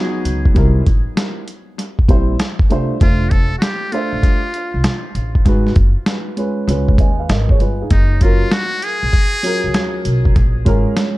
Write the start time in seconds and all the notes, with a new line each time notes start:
Already playing: F#3 B3 D#4 G#4
0.03 F#4
0.25 C#2, closed hi-hat
0.45 kick
0.54 C2 G3 C4 E4 A#4, kick, closed hi-hat
0.86 A1, kick, closed hi-hat
1.17 snare, closed hi-hat
1.48 closed hi-hat
1.79 closed hi-hat
1.99 kick
2.08 A#1 G3 C4 E4 C5, kick, closed hi-hat
2.39 snare, closed hi-hat
2.59 kick
2.70 C2 A3 D4 F4 C5, closed hi-hat
3.01 F1 A3 D4 F4 C5, kick, closed hi-hat
3.31 A4, kick, closed hi-hat
3.59 F#4, snare, closed hi-hat
3.63 G4
3.92 A3 D4 F4 C5, closed hi-hat
4.13 A1
4.23 kick, closed hi-hat
4.54 closed hi-hat
4.74 C2
4.84 snare, closed hi-hat
5.15 A1, closed hi-hat
5.35 kick
5.45 G#1 G#3 D#4 F#4 B4, kick, closed hi-hat
5.67 snare
5.76 F#1, kick, closed hi-hat
6.06 snare, closed hi-hat
6.37 G#3 C#4 F4 B4, closed hi-hat
6.68 C#2 G#3 C#4 F4 B4, closed hi-hat
6.88 kick
6.98 D#2 D#5 G#5, kick, closed hi-hat
7.19 B4 F5
7.29 G#1 A#4 D#5, snare, closed hi-hat
7.49 G#4 C#5, kick
7.60 G1 F4 B4, closed hi-hat
7.81 D#4 G#4
7.90 F#1 D#4, kick, closed hi-hat
8.21 F#3 C#4 F4 A#4, kick, closed hi-hat
8.52 F#4, snare, closed hi-hat
8.82 G#4, closed hi-hat
9.03 A#1
9.13 kick, closed hi-hat
9.43 F#3 C#4 F4 A#4, closed hi-hat
9.64 C#2
9.74 snare, closed hi-hat
10.05 B1, closed hi-hat
10.25 kick
10.36 A#1, kick, closed hi-hat
10.65 G#1 G#3 C#4 F4 A#4, kick, closed hi-hat
10.97 snare, closed hi-hat